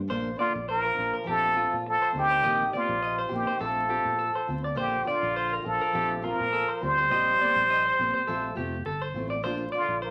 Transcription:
0.08 fingered electric bass A#1, steel-string acoustic guitar F3 A#3 D4, clean electric guitar C5
0.36 steel-string acoustic guitar A#3 D4, clean electric guitar D5
0.41 trombone D3, muted trumpet F4
0.55 fingered electric bass A#1
0.69 trombone F3, muted trumpet A#4, clean electric guitar C5
0.85 clean electric guitar A#4
0.94 steel-string acoustic guitar A#3 D4
0.98 fingered electric bass A#1
1.14 clean electric guitar A#4
1.24 steel-string acoustic guitar F3 A3 C4, clean electric guitar G4
1.28 fingered electric bass A#1, trombone F3, muted trumpet A4
1.53 steel-string acoustic guitar A3 C4, clean electric guitar F4
1.73 fingered electric bass A#2
1.86 trombone F3, muted trumpet A4, muted clean electric guitar stroke
2.02 clean electric guitar C5
2.12 fingered electric bass D2, steel-string acoustic guitar A3 C4
2.17 trombone D#3, muted trumpet G4
2.31 clean electric guitar C5
2.43 fingered electric bass A#1, steel-string acoustic guitar D#3 A#3 C4 G4, clean electric guitar D#5
2.72 trombone C3, steel-string acoustic guitar A#3 C4 G4, clean electric guitar D5
2.77 muted trumpet F4
2.89 fingered electric bass A#1
3.02 clean electric guitar D#5
3.18 clean electric guitar C5
3.29 fingered electric bass A#1, steel-string acoustic guitar A#3 C4 G4
3.34 trombone D#3, muted trumpet G4
3.47 clean electric guitar C5
3.59 fingered electric bass A#1, steel-string acoustic guitar A3 C4 F4, clean electric guitar A4, muted trumpet A4
3.64 trombone F3
3.88 steel-string acoustic guitar C4 F4, clean electric guitar G4
4.05 fingered electric bass A#2
4.19 clean electric guitar A4
4.35 clean electric guitar C5
4.48 fingered electric bass D2, steel-string acoustic guitar C4 F4
4.64 clean electric guitar D5
4.75 fingered electric bass A#1, trombone D3, steel-string acoustic guitar A#3 D4 F4, muted trumpet G4, clean electric guitar C5
5.05 trombone D3, steel-string acoustic guitar D4 F4, muted trumpet F4, clean electric guitar D5
5.23 fingered electric bass A#1
5.36 clean electric guitar C5
5.53 clean electric guitar A#4
5.62 trombone F3, steel-string acoustic guitar D4 F4, muted trumpet A4
5.66 fingered electric bass A#1
5.81 clean electric guitar A#4
5.93 fingered electric bass A#1, steel-string acoustic guitar F3 A3 C4 F4, clean electric guitar G4
6.22 steel-string acoustic guitar A3 C4 F4, clean electric guitar F4, muted trumpet A#4
6.26 trombone F3
6.40 fingered electric bass A#2
6.53 clean electric guitar A4
6.68 clean electric guitar C5
6.81 fingered electric bass D2, trombone G3, steel-string acoustic guitar A3 C4 F4, muted trumpet C5
6.98 clean electric guitar C5
7.09 fingered electric bass A#1, steel-string acoustic guitar D#3 A#3 C4 G4, clean electric guitar D#5
7.38 steel-string acoustic guitar A#3 C4 G4, clean electric guitar D5
7.56 fingered electric bass A#1
7.70 clean electric guitar D#5
7.85 clean electric guitar C5
7.98 fingered electric bass A#1, steel-string acoustic guitar A#3 C4 G4
8.14 clean electric guitar C5
8.27 fingered electric bass A#1, steel-string acoustic guitar F3 A3 C4 F4, clean electric guitar A4
8.55 fingered electric bass F1, steel-string acoustic guitar A3 C4 F4, clean electric guitar G4
8.86 fingered electric bass G1, clean electric guitar A4
9.01 clean electric guitar C5
9.14 fingered electric bass A1, steel-string acoustic guitar A3 C4 F4
9.30 clean electric guitar D5
9.43 fingered electric bass A#1, steel-string acoustic guitar A#3 D4 F4, clean electric guitar C5
9.72 steel-string acoustic guitar F4, clean electric guitar D5
9.76 trombone D3, steel-string acoustic guitar D4, muted trumpet F4
9.89 fingered electric bass A#1
10.02 muted trumpet A#4, clean electric guitar C5
10.07 trombone F3

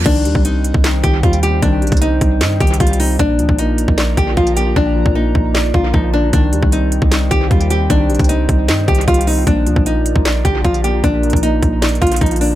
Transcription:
0.06 808-style bass C2, analog synth pad D#3 C5 D5 G5, grand piano D#3, nylon-string guitar D4, kick, closed hi-hat, crash
0.25 808-style bass D#2, grand piano G3, closed hi-hat
0.35 808-style bass C2, kick
0.45 grand piano C4, nylon-string guitar D#4, closed hi-hat
0.64 closed hi-hat
0.74 808-style bass C2, kick
0.84 grand piano D#4, snare, clap, closed hi-hat
1.03 808-style bass C2, grand piano D#3, nylon-string guitar G4, kick, closed hi-hat
1.23 808-style bass D#2, grand piano G3, nylon-string guitar F4, kick, closed hi-hat
1.33 closed hi-hat
1.43 grand piano C4, nylon-string guitar G4, closed hi-hat
1.62 808-style bass C2, grand piano D#3, nylon-string guitar D4, kick, closed hi-hat
1.82 808-style bass A#1, grand piano G3, closed hi-hat
1.87 closed hi-hat
1.92 808-style bass C2, kick, closed hi-hat
1.97 closed hi-hat
2.01 grand piano C4, nylon-string guitar D#4, closed hi-hat
2.21 808-style bass C2, kick, closed hi-hat
2.41 808-style bass G2, grand piano D#4, snare, clap, closed hi-hat
2.60 808-style bass C2, grand piano D#3, nylon-string guitar G4, kick, closed hi-hat
2.67 closed hi-hat
2.74 closed hi-hat
2.80 808-style bass C2, grand piano G3, nylon-string guitar F4, kick, closed hi-hat
2.87 closed hi-hat
2.93 closed hi-hat
3.00 grand piano C4, nylon-string guitar D#4, open hi-hat
3.19 808-style bass A#1, grand piano A#2, nylon-string guitar D4, analog synth pad F4 A#4 A#5, kick, closed hi-hat
3.39 808-style bass D2, grand piano F3, closed hi-hat
3.49 808-style bass A#1, kick
3.58 grand piano A#3, nylon-string guitar D#4, closed hi-hat
3.78 closed hi-hat
3.88 808-style bass A#1, kick
3.98 grand piano D5, snare, clap, closed hi-hat
4.17 808-style bass A#1, grand piano D3, nylon-string guitar G4, kick, closed hi-hat
4.37 808-style bass A#1, grand piano F3, nylon-string guitar F4, kick, closed hi-hat
4.47 closed hi-hat
4.57 grand piano A#3, nylon-string guitar G4, closed hi-hat
4.76 808-style bass A#1, grand piano A#2, nylon-string guitar D4, kick
4.96 grand piano F3
5.06 808-style bass A#1, kick
5.15 grand piano A#3, nylon-string guitar D#4
5.35 808-style bass A#1, kick
5.54 grand piano D5, snare, clap
5.74 808-style bass A#1, grand piano D3, nylon-string guitar F4, kick
5.93 808-style bass A#1, grand piano F3, nylon-string guitar D#4, kick
6.13 grand piano A#3, nylon-string guitar D4
6.33 808-style bass C2, analog synth pad D#3 C5 G5, grand piano D#3, nylon-string guitar D4, kick, closed hi-hat
6.52 808-style bass D#2, grand piano G3, closed hi-hat
6.63 808-style bass C2, kick
6.72 grand piano C4, nylon-string guitar D#4, closed hi-hat
6.92 closed hi-hat
7.02 808-style bass C2, kick
7.12 grand piano D#4, snare, clap, closed hi-hat
7.31 808-style bass C2, grand piano D#3, nylon-string guitar G4, kick, closed hi-hat
7.51 808-style bass D#2, grand piano G3, nylon-string guitar F4, kick, closed hi-hat
7.61 closed hi-hat
7.70 grand piano C4, nylon-string guitar G4, closed hi-hat
7.90 808-style bass C2, grand piano D#3, nylon-string guitar D4, kick, closed hi-hat
8.09 808-style bass A#1, grand piano G3, closed hi-hat
8.15 closed hi-hat
8.19 808-style bass C2, kick, closed hi-hat
8.24 closed hi-hat
8.29 grand piano C4, nylon-string guitar D#4, closed hi-hat
8.49 808-style bass C2, kick, closed hi-hat
8.68 808-style bass G2, grand piano D#4, snare, clap, closed hi-hat
8.88 808-style bass C2, grand piano D#3, nylon-string guitar G4, kick, closed hi-hat
8.95 closed hi-hat
9.01 closed hi-hat
9.08 808-style bass C2, grand piano G3, nylon-string guitar F4, kick, closed hi-hat
9.14 closed hi-hat
9.21 closed hi-hat
9.27 grand piano C4, nylon-string guitar D#4, open hi-hat
9.47 808-style bass A#1, grand piano A#2, nylon-string guitar D4, analog synth pad F4 A#4 D5 A#5, kick, closed hi-hat
9.66 808-style bass D2, grand piano F3, closed hi-hat
9.76 808-style bass A#1, kick
9.86 grand piano A#3, nylon-string guitar D#4, closed hi-hat
10.06 closed hi-hat
10.16 808-style bass A#1, kick
10.25 grand piano D5, snare, clap, closed hi-hat
10.45 808-style bass A#1, grand piano D3, nylon-string guitar G4, kick, closed hi-hat
10.64 808-style bass A#1, grand piano F3, nylon-string guitar F4, kick, closed hi-hat
10.74 closed hi-hat
10.84 grand piano A#3, nylon-string guitar G4, closed hi-hat
11.04 808-style bass A#1, grand piano A#2, nylon-string guitar D4, kick, closed hi-hat
11.23 grand piano F3, closed hi-hat
11.30 808-style bass A#1, kick, closed hi-hat
11.36 closed hi-hat
11.42 grand piano A#3, nylon-string guitar D#4, closed hi-hat
11.63 808-style bass A#1, kick, closed hi-hat
11.82 grand piano D5, snare, clap, closed hi-hat
11.89 closed hi-hat
11.95 closed hi-hat
12.01 808-style bass A#1, grand piano D3, nylon-string guitar F4, kick, closed hi-hat
12.07 closed hi-hat
12.12 closed hi-hat
12.16 closed hi-hat
12.21 808-style bass A#1, grand piano F3, nylon-string guitar D#4, kick
12.26 closed hi-hat
12.31 closed hi-hat
12.36 closed hi-hat
12.41 grand piano A#3, nylon-string guitar D4, open hi-hat

